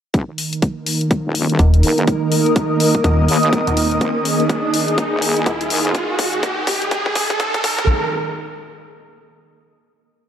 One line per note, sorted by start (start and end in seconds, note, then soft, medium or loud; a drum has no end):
0.14 0.26 D#1 medium
0.14 7.84 D#3 medium
0.14 5.95 A#3 medium
0.14 7.84 D#4 medium
0.14 3.97 A#4 medium
0.14 kick loud
0.14 closed hi-hat medium
0.14 riser medium
0.38 open hi-hat medium
0.53 closed hi-hat medium
0.62 kick loud
0.62 closed hi-hat medium
0.79 5.95 A#4 medium
0.86 open hi-hat loud
1.01 closed hi-hat soft
1.11 kick loud
1.11 closed hi-hat medium
1.24 1.58 D#1 medium
1.24 5.95 D#5 medium
1.35 open hi-hat loud
1.50 closed hi-hat medium
1.59 1.82 D#1 loud
1.59 kick loud
1.59 closed hi-hat medium
1.67 5.95 D#6 medium
1.74 closed hi-hat medium
1.83 2.06 F#1 loud
1.83 open hi-hat loud
1.98 closed hi-hat medium
2.07 kick loud
2.07 closed hi-hat medium
2.32 open hi-hat loud
2.46 closed hi-hat soft
2.56 kick loud
2.56 closed hi-hat medium
2.80 open hi-hat loud
2.95 kick medium
2.95 closed hi-hat soft
3.04 3.27 D#1 loud
3.04 kick loud
3.04 closed hi-hat medium
3.28 3.51 D#2 medium
3.28 open hi-hat loud
3.43 closed hi-hat medium
3.53 3.65 D#1 loud
3.53 kick loud
3.53 closed hi-hat medium
3.67 4.00 D#1 loud
3.67 closed hi-hat medium
3.77 open hi-hat loud
3.91 closed hi-hat medium
4.01 4.13 D#1 loud
4.01 7.84 G#4 medium
4.01 kick loud
4.01 closed hi-hat medium
4.25 open hi-hat loud
4.40 closed hi-hat soft
4.49 kick loud
4.49 closed hi-hat medium
4.74 open hi-hat loud
4.88 closed hi-hat medium
4.98 kick loud
4.98 closed hi-hat medium
5.12 5.45 D#1 medium
5.22 open hi-hat loud
5.37 closed hi-hat soft
5.46 5.69 D#1 loud
5.46 kick loud
5.46 closed hi-hat medium
5.61 closed hi-hat medium
5.70 5.93 F#1 loud
5.70 open hi-hat loud
5.85 closed hi-hat medium
5.95 kick loud
5.95 closed hi-hat medium
6.19 kick loud
6.19 open hi-hat loud
6.33 closed hi-hat soft
6.43 kick loud
6.43 closed hi-hat medium
6.67 kick loud
6.67 open hi-hat loud
6.82 closed hi-hat soft
6.91 kick loud
6.91 closed hi-hat medium
7.06 kick medium
7.15 kick loud
7.15 open hi-hat loud
7.30 kick medium
7.30 closed hi-hat medium
7.40 kick loud
7.40 closed hi-hat medium
7.54 kick medium
7.54 closed hi-hat medium
7.64 kick loud
7.64 open hi-hat loud
7.79 kick medium
7.79 closed hi-hat medium